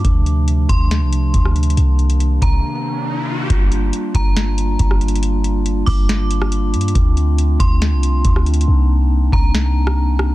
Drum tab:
HH |x-----x-----x-----x-----x-----x-----x-----x-x-x-|x-----x--x--x-----x-----------------------------|x-----x-----x-----x-----x-----x-----x-----x-x-x-|x-----x-----x-----o-----x-----x-----x-----x-x-x-|
SD |------------------------o--------------r--------|------------------------------------------------|------------------------o--------------r--------|------------------------o--------r--------------|
BD |o-----------------o-----------------o-----------|------------------o-----------------------------|o-----------------o-----------------o-----------|------------------o-----------------------------|

HH |x-----x-----x-----x-----x-----x-----x-----x-x-x-|------------------------------------------------|
SD |------------------------o--------------r--------|------------------------o--------r--------r-----|
BD |o-----------------o-----------------o-----------|------------------o-----------------------------|